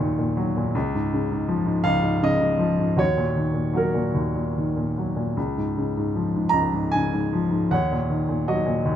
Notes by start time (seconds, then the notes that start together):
Already playing: D#2 A#2 F#3 F#4 A#4 D#5
0.00 D#3
0.19 A#2
0.37 F#3
0.57 A#2
0.75 C#2
0.94 G#2
1.13 C#3
1.32 G#2
1.48 F3
1.66 G#2
1.84 C#2 F5
2.02 G#2
2.21 C#3 D#5
2.41 G#2
2.59 F3
2.78 G#2
2.96 D#2 F#4 C#5
3.17 A#2
3.36 D#3
3.53 A#2
3.73 F#3 F#4 A#4
3.94 A#2
4.14 D#2
4.35 A#2
4.57 D#3
4.77 A#2
4.98 F#3
5.16 A#2
5.37 C#2
5.57 G#2
5.77 C#3
5.97 G#2
6.15 F3
6.36 G#2
6.49 C#2 A#5
6.74 G#2
6.91 C#3 G#5
7.13 G#2
7.33 F3
7.50 G#2
7.71 D#2 C#5 F#5
7.92 A#2
8.10 D#3
8.28 A#2
8.48 F#3 F#4 D#5
8.66 A#2
8.85 D#2